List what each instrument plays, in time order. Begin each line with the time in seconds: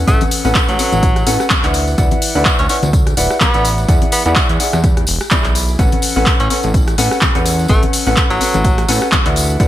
0.08 analog synth bass A1, tenor saxophone A3, upright piano C#4 A4 B4 F#5, kick, closed hi-hat, tambourine
0.21 closed hi-hat, tambourine, high conga
0.31 open hi-hat, tambourine
0.45 analog synth bass A1, upright piano C#4 A4 B4 F#5, tambourine
0.55 kick, clap, closed hi-hat, tambourine
0.69 analog synth bass A1, tenor saxophone F#3, closed hi-hat, tambourine
0.79 upright piano C#4 A4 B4 F#5, open hi-hat, tambourine
0.92 analog synth bass A1, closed hi-hat, tambourine, high conga
1.03 kick, closed hi-hat, tambourine
1.16 cross-stick, closed hi-hat, tambourine
1.27 analog synth bass A2, upright piano C#4 A4 B4 F#5, open hi-hat, tambourine
1.40 cross-stick, tambourine
1.50 kick, clap, closed hi-hat, tambourine, high conga
1.63 analog synth bass D2, upright piano E4 B4 D5 F#5, clap, closed hi-hat, tambourine
1.74 open hi-hat, tambourine
1.87 tambourine
1.98 analog synth bass D2, upright piano E4 B4 D5 F#5, kick, closed hi-hat, tambourine
2.11 closed hi-hat, tambourine, high conga
2.22 open hi-hat, tambourine
2.35 analog synth bass D2, upright piano E4 B4 D5 F#5, tambourine
2.45 kick, clap, closed hi-hat, tambourine
2.59 analog synth bass D2, tenor saxophone C#4, closed hi-hat, tambourine
2.69 tenor saxophone C#4, upright piano E4 B4 D5 F#5, open hi-hat, tambourine
2.83 analog synth bass D2, closed hi-hat, tambourine, high conga
2.93 kick, closed hi-hat, tambourine
3.07 cross-stick, closed hi-hat, tambourine
3.17 analog synth bass D1, upright piano E4 B4 D5 F#5, open hi-hat, tambourine
3.30 cross-stick, tambourine
3.40 tenor saxophone B3, kick, clap, closed hi-hat, tambourine, high conga
3.54 analog synth bass A1, upright piano E4 B4 D5 F#5, closed hi-hat, tambourine
3.65 open hi-hat, tambourine
3.78 tambourine
3.88 analog synth bass E2, upright piano E4 G#4 D5 F#5, kick, closed hi-hat, tambourine
4.02 closed hi-hat, tambourine, high conga
4.12 tenor saxophone B3, open hi-hat, tambourine
4.25 analog synth bass E2, tenor saxophone B3, upright piano E4 G#4 D5 F#5, closed hi-hat, tambourine
4.35 kick, clap, closed hi-hat, tambourine
4.49 analog synth bass E2, closed hi-hat, tambourine
4.60 upright piano E4 G#4 D5 F#5, open hi-hat, tambourine
4.73 analog synth bass E2, cross-stick, closed hi-hat, tambourine, high conga
4.84 kick, closed hi-hat, tambourine
4.97 cross-stick, closed hi-hat, tambourine
5.07 analog synth bass E1, open hi-hat, tambourine
5.21 cross-stick, tambourine
5.31 upright piano E4 G#4 D5 B5, kick, clap, closed hi-hat, tambourine, high conga
5.44 analog synth bass B1, clap, closed hi-hat, tambourine
5.55 open hi-hat, tambourine
5.68 tambourine
5.79 analog synth bass A1, upright piano C#4 A4 B4 F#5, kick, closed hi-hat, tambourine
5.92 closed hi-hat, tambourine, high conga
6.02 open hi-hat, tambourine
6.16 analog synth bass A1, upright piano C#4 A4 B4 F#5, tambourine
6.26 kick, clap, closed hi-hat, tambourine
6.40 analog synth bass A1, tenor saxophone C#4, closed hi-hat, tambourine
6.50 upright piano C#4 A4 B4 F#5, tenor saxophone C#4, open hi-hat, tambourine
6.63 analog synth bass A1, closed hi-hat, tambourine, high conga
6.74 kick, closed hi-hat, tambourine
6.87 cross-stick, closed hi-hat, tambourine
6.98 analog synth bass A2, upright piano C#4 A4 B4 F#5, open hi-hat, tambourine
7.11 cross-stick, tambourine
7.21 kick, clap, closed hi-hat, tambourine, high conga
7.35 analog synth bass E2, upright piano C#4 A4 B4 F#5, closed hi-hat, tambourine
7.46 open hi-hat, tambourine
7.59 tambourine
7.68 analog synth bass A1, tenor saxophone A3, upright piano C#4 A4 B4 F#5, kick, closed hi-hat, tambourine
7.83 closed hi-hat, tambourine, high conga
7.93 open hi-hat, tambourine
8.07 analog synth bass A1, upright piano C#4 A4 B4 F#5, tambourine
8.16 kick, clap, closed hi-hat, tambourine
8.30 analog synth bass A1, tenor saxophone F#3, closed hi-hat, tambourine
8.41 upright piano C#4 A4 B4 F#5, open hi-hat, tambourine
8.54 analog synth bass A1, closed hi-hat, tambourine, high conga
8.64 kick, closed hi-hat, tambourine
8.78 cross-stick, closed hi-hat, tambourine
8.88 analog synth bass A2, upright piano C#4 A4 B4 F#5, open hi-hat, tambourine
9.02 cross-stick, tambourine
9.12 kick, clap, closed hi-hat, tambourine, high conga
9.25 analog synth bass D2, upright piano E4 B4 D5 F#5, clap, closed hi-hat, tambourine
9.36 open hi-hat, tambourine
9.49 tambourine
9.60 analog synth bass D2, upright piano E4 B4 D5 F#5, kick, closed hi-hat, tambourine